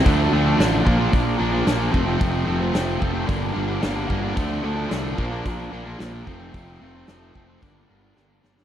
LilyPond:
<<
  \new Staff \with { instrumentName = "Overdriven electric guitar" } { \time 4/4 \key g \minor \tempo 4 = 111 <d f a d'>8 <d f a d'>16 <f a d'>16 <d f a d'>8 <bes, f bes d'>16 <f bes d'>8. <bes, f bes d'>16 <f bes d'>16 <bes, f bes d'>16 <f bes d'>16 <f, c f a c'>16 <f a c'>16 | <f, c f a c'>8 <c f a c'>16 <f a c'>16 <f, c f a c'>8 <c f a c'>16 <f a c'>16 <g, d g bes d'>8 <d g bes d'>16 <g bes d'>16 <g, d g bes d'>16 <g bes d'>16 <d g bes d'>16 <g bes d'>16 | <d f a d'>8 <d f a d'>16 <f a d'>16 <d f a d'>8 <bes, f bes d'>16 <f bes d'>8. <bes, f bes d'>16 <f bes d'>16 <bes, f bes d'>16 <f bes d'>16 <f, c f a c'>16 <f a c'>16 | <f, c f a c'>8 <c f a c'>16 <f a c'>16 <f, c f a c'>8 <c f a c'>16 <f a c'>16 <g, d g bes d'>8 <d g bes d'>16 <g bes d'>16 <g, d g bes d'>16 <g bes d'>16 <d g bes d'>16 <g bes d'>16 | }
  \new Staff \with { instrumentName = "Picked electric bass" } { \clef bass \time 4/4 \key g \minor d,8 d,8 a,,8 bes,,8 bes,,8 bes,,8 bes,,8 f,,8 | f,,8 f,,8 f,,8 f,,8 g,,8 g,,8 g,,8 g,,8 | d,8 d,8 c,8 bes,,8 bes,,8 bes,,8 bes,,8 f,,8 | f,,8 f,,8 f,,8 f,,8 g,,8 g,,8 g,,8 g,,8 | }
  \new DrumStaff \with { instrumentName = "Drums" } \drummode { \time 4/4 <hho bd>4 <hho sn>8 bd8 <hho bd>4 <hho sn>8 bd8 | <hho bd>4 <hho sn>8 bd8 <hho bd>4 <hho sn>8 bd8 | <hho bd>4 <hho sn>8 bd8 <hho bd>4 <hho sn>8 bd8 | <hho bd>4 <hho sn>8 bd8 <hho bd>4 sn8 sn16 sn16 | }
>>